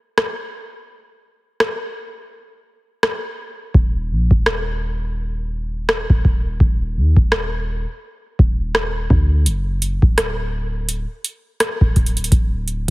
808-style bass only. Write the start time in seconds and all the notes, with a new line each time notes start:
3.75 D#1
4.11 A#1
4.31 D#1
6.10 D#1
6.25 D#1
6.60 D#1
6.96 D#2
7.17 D#1
8.39 D#1
9.10 D2
9.46 F#1
10.03 D1
11.81 D1
11.96 D1
12.32 D1